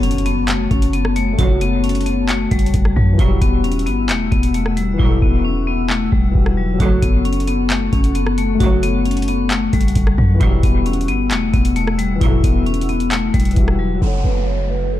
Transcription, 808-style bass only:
0, 0, Header, 1, 2, 480
1, 0, Start_track
1, 0, Tempo, 451128
1, 1475, Time_signature, 4, 2, 24, 8
1, 15958, End_track
2, 0, Start_track
2, 0, Title_t, "808-style bass"
2, 0, Program_c, 0, 38
2, 0, Note_on_c, 0, 30, 107
2, 716, Note_off_c, 0, 30, 0
2, 754, Note_on_c, 0, 30, 111
2, 1446, Note_off_c, 0, 30, 0
2, 1474, Note_on_c, 0, 30, 117
2, 2632, Note_off_c, 0, 30, 0
2, 2674, Note_on_c, 0, 30, 109
2, 2905, Note_off_c, 0, 30, 0
2, 2915, Note_on_c, 0, 30, 106
2, 3145, Note_off_c, 0, 30, 0
2, 3154, Note_on_c, 0, 42, 110
2, 3385, Note_off_c, 0, 42, 0
2, 3395, Note_on_c, 0, 28, 121
2, 3625, Note_off_c, 0, 28, 0
2, 3634, Note_on_c, 0, 28, 115
2, 4115, Note_on_c, 0, 31, 102
2, 4131, Note_off_c, 0, 28, 0
2, 4354, Note_on_c, 0, 28, 97
2, 4370, Note_off_c, 0, 31, 0
2, 4582, Note_off_c, 0, 28, 0
2, 4595, Note_on_c, 0, 28, 107
2, 5286, Note_off_c, 0, 28, 0
2, 5316, Note_on_c, 0, 28, 118
2, 5545, Note_off_c, 0, 28, 0
2, 5555, Note_on_c, 0, 28, 107
2, 6476, Note_off_c, 0, 28, 0
2, 6515, Note_on_c, 0, 28, 106
2, 6745, Note_off_c, 0, 28, 0
2, 6755, Note_on_c, 0, 28, 109
2, 7216, Note_off_c, 0, 28, 0
2, 7235, Note_on_c, 0, 30, 117
2, 7465, Note_off_c, 0, 30, 0
2, 7473, Note_on_c, 0, 30, 108
2, 8395, Note_off_c, 0, 30, 0
2, 8434, Note_on_c, 0, 30, 110
2, 9125, Note_off_c, 0, 30, 0
2, 9154, Note_on_c, 0, 30, 115
2, 10312, Note_off_c, 0, 30, 0
2, 10354, Note_on_c, 0, 30, 111
2, 10584, Note_off_c, 0, 30, 0
2, 10595, Note_on_c, 0, 30, 108
2, 10825, Note_off_c, 0, 30, 0
2, 10833, Note_on_c, 0, 42, 110
2, 11064, Note_off_c, 0, 42, 0
2, 11074, Note_on_c, 0, 28, 116
2, 11304, Note_off_c, 0, 28, 0
2, 11313, Note_on_c, 0, 28, 113
2, 11793, Note_on_c, 0, 31, 102
2, 11809, Note_off_c, 0, 28, 0
2, 12034, Note_on_c, 0, 28, 100
2, 12050, Note_off_c, 0, 31, 0
2, 12262, Note_off_c, 0, 28, 0
2, 12274, Note_on_c, 0, 28, 104
2, 12965, Note_off_c, 0, 28, 0
2, 12994, Note_on_c, 0, 28, 115
2, 13225, Note_off_c, 0, 28, 0
2, 13233, Note_on_c, 0, 28, 104
2, 14155, Note_off_c, 0, 28, 0
2, 14194, Note_on_c, 0, 28, 107
2, 14425, Note_off_c, 0, 28, 0
2, 14435, Note_on_c, 0, 28, 104
2, 14895, Note_off_c, 0, 28, 0
2, 14914, Note_on_c, 0, 30, 111
2, 15144, Note_off_c, 0, 30, 0
2, 15154, Note_on_c, 0, 30, 100
2, 15958, Note_off_c, 0, 30, 0
2, 15958, End_track
0, 0, End_of_file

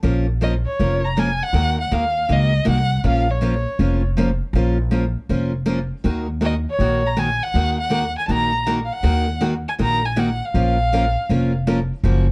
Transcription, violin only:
0, 0, Header, 1, 2, 480
1, 0, Start_track
1, 0, Key_signature, -5, "minor"
1, 0, Tempo, 375000
1, 59, Time_signature, 4, 2, 24, 8
1, 15768, End_track
2, 0, Start_track
2, 0, Title_t, "Violin"
2, 0, Program_c, 0, 40
2, 551, Note_on_c, 0, 75, 77
2, 686, Note_off_c, 0, 75, 0
2, 848, Note_on_c, 0, 73, 88
2, 1340, Note_on_c, 0, 82, 76
2, 1359, Note_off_c, 0, 73, 0
2, 1524, Note_on_c, 0, 80, 86
2, 1543, Note_off_c, 0, 82, 0
2, 1826, Note_on_c, 0, 78, 97
2, 1845, Note_off_c, 0, 80, 0
2, 2296, Note_off_c, 0, 78, 0
2, 2312, Note_on_c, 0, 78, 81
2, 2476, Note_on_c, 0, 77, 86
2, 2495, Note_off_c, 0, 78, 0
2, 2972, Note_on_c, 0, 75, 94
2, 2992, Note_off_c, 0, 77, 0
2, 3431, Note_off_c, 0, 75, 0
2, 3439, Note_on_c, 0, 78, 91
2, 3878, Note_off_c, 0, 78, 0
2, 3943, Note_on_c, 0, 77, 86
2, 4238, Note_on_c, 0, 73, 70
2, 4258, Note_off_c, 0, 77, 0
2, 5183, Note_off_c, 0, 73, 0
2, 8254, Note_on_c, 0, 75, 80
2, 8384, Note_off_c, 0, 75, 0
2, 8578, Note_on_c, 0, 73, 93
2, 9041, Note_on_c, 0, 82, 84
2, 9060, Note_off_c, 0, 73, 0
2, 9196, Note_on_c, 0, 80, 98
2, 9215, Note_off_c, 0, 82, 0
2, 9510, Note_on_c, 0, 78, 100
2, 9530, Note_off_c, 0, 80, 0
2, 9978, Note_off_c, 0, 78, 0
2, 9985, Note_on_c, 0, 78, 91
2, 10423, Note_off_c, 0, 78, 0
2, 10468, Note_on_c, 0, 80, 83
2, 10560, Note_off_c, 0, 80, 0
2, 10585, Note_on_c, 0, 81, 65
2, 10636, Note_on_c, 0, 82, 111
2, 10655, Note_off_c, 0, 81, 0
2, 11108, Note_off_c, 0, 82, 0
2, 11325, Note_on_c, 0, 77, 62
2, 11425, Note_on_c, 0, 78, 94
2, 11445, Note_off_c, 0, 77, 0
2, 12071, Note_off_c, 0, 78, 0
2, 12394, Note_on_c, 0, 80, 83
2, 12467, Note_off_c, 0, 80, 0
2, 12575, Note_on_c, 0, 82, 108
2, 12869, Note_on_c, 0, 80, 83
2, 12889, Note_off_c, 0, 82, 0
2, 13042, Note_on_c, 0, 78, 76
2, 13062, Note_off_c, 0, 80, 0
2, 13368, Note_on_c, 0, 77, 91
2, 13387, Note_off_c, 0, 78, 0
2, 14785, Note_off_c, 0, 77, 0
2, 15768, End_track
0, 0, End_of_file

